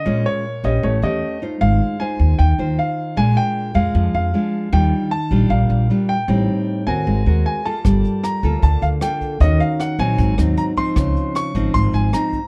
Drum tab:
HH |--------|--------|--------|--------|
SD |--------|--------|--------|--------|
BD |--------|--------|--------|--------|

HH |--------|xxxxxxxx|xxxxxxxx|xxxxxxxx|
SD |--------|r-r---r-|--r--r--|r-r---r-|
BD |--------|o--oo--o|o--oo--o|o--oo--o|